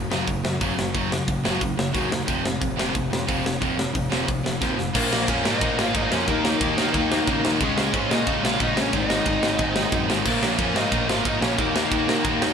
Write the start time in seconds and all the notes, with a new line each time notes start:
0.10 F#1 F#2 C#3 F#3, snare
0.27 F#1 F#2 C#3, kick, open hi-hat
0.44 F#2 C#3, snare
0.61 F#1 F#2 C#3 F#3, kick, open hi-hat
0.77 F#1 F#2 C#3, snare
0.94 F#1 F#2 C#3 F#3, kick, open hi-hat
1.11 F#2 C#3, snare
1.27 F#1 F#2 C#3, kick, open hi-hat
1.43 F#1 F#2 C#3 F#3, snare
1.61 C#2 F#2 C#3, kick, open hi-hat
1.77 F#1 F#2 C#3, snare
1.93 D#2 F#2 C#3 F#3, kick, open hi-hat
2.10 D#2 F#2 C#3, snare
2.26 F1 F2 C3 F3, kick, open hi-hat
2.43 F1 F2 C3, snare
2.61 F1 F2 C3, kick, open hi-hat
2.76 F1 F2 C3 F3, snare
2.93 F1 F2 C3, kick, open hi-hat
3.10 F2 C3, snare
3.27 F1 F2 C3 F3, kick, open hi-hat
3.44 F1 F2 C3, snare
3.60 F1 F2 C3 F3, kick, open hi-hat
3.77 F2 C3, snare
3.93 F1 F2 C3, kick, open hi-hat
4.10 F1 F2 C3 F3, snare
4.26 C2 F2 C3, kick, open hi-hat
4.43 F1 F2 C3, snare
4.60 D#2 F2 C3 F3, kick, snare
4.77 F1 F2 C3, snare
4.94 A#1 A#2 F3 A#3 C#4 A#4, kick, crash
5.10 A#1 A#2 F3 A#3 C#4, snare
5.27 F2 A#2 F3 A#3 C#4 C#5, kick, ride
5.43 G#2 A#2 F3 A#3 C#4 D#4 D#5, snare
5.61 A#1 A#2 F3 A#3 C#4, kick, ride
5.77 G#1 A#2 F3 A#3 C#4 F4 F5, snare
5.94 G#1 A#2 F3 A#3 C#4 D#4 D#5, kick, ride
6.10 F2 A#2 F3 A#3 C#4 C#5, snare
6.27 D#2 D#3 F#3 A#3 D#4 A#4, kick, ride
6.43 D#3 F#3 A#3 D#4, snare
6.60 D#2 D#3 F#3 A#3 D#4, kick, ride
6.77 D#2 D#3 F#3 A#3 D#4, snare
6.93 D#2 D#3 F#3 A#3 D#4, kick, ride
7.10 D#3 F#3 A#3 D#4, snare
7.27 C#3 D#3 F#3 A#3 D#4, kick, ride
7.43 D#2 D#3 F#3 A#3 D#4, snare
7.59 C#2 C#3 G#3 C#4 F4 G#4, kick, ride
7.76 C#2 C#3 G#3 C#4 F4, snare
7.93 G#2 C#3 G#3 C#4 F4 C#5, kick, ride
8.10 A#2 C#3 G#3 C#4 D#4 F4 D#5, snare
8.25 C#2 C#3 G#3 C#4 F4, kick, ride
8.41 A#1 C#3 G#3 C#4 F4 F5, snare
8.58 A#1 C#3 G#3 C#4 D#4 F4 D#5, kick, ride
8.75 A#1 C#3 G#3 C#4 F4 C#5, snare
8.91 G#1 G#2 D#3 G#3 C4 D#4 D#5, kick, ride
9.07 G#2 D#3 G#3 C4 D#4, snare
9.25 G#1 G#2 D#3 G#3 C4 D#4, kick, ride
9.42 G#1 G#2 D#3 G#3 C4 D#4, snare
9.59 G#1 G#2 D#3 G#3 C4 D#4, kick, ride
9.76 G#2 D#3 G#3 C4 D#4, snare
9.92 F#2 G#2 D#3 G#3 C4 D#4, kick, ride
10.07 G#1 G#2 D#3 G#3 C4 D#4, snare
10.25 A#1 A#2 F3 A#3 C#4 F4 A#4, kick, crash
10.41 A#1 A#2 F3 A#3 C#4 F4, snare
10.58 F2 A#2 F3 A#3 C#4 F4 C#5, kick, ride
10.74 G#2 A#2 F3 A#3 C#4 D#4 F4 D#5, snare
10.92 A#1 A#2 F3 A#3 C#4 F4, kick, ride
11.07 G#1 A#2 F3 A#3 C#4 F4 F5, snare
11.25 G#1 A#2 F3 A#3 C#4 D#4 F4 D#5, kick, ride
11.40 A#1 A#2 F3 A#3 C#4 F4 C#5, snare
11.57 D#2 D#3 A#3 D#4 F#4 A#4, kick, ride
11.74 D#3 A#3 D#4 F#4, snare
11.91 D#2 D#3 A#3 D#4 F#4, kick, ride
12.06 D#2 D#3 A#3 D#4 F#4, snare
12.23 D#2 D#3 A#3 D#4 F#4, kick, ride
12.39 D#3 A#3 D#4 F#4, snare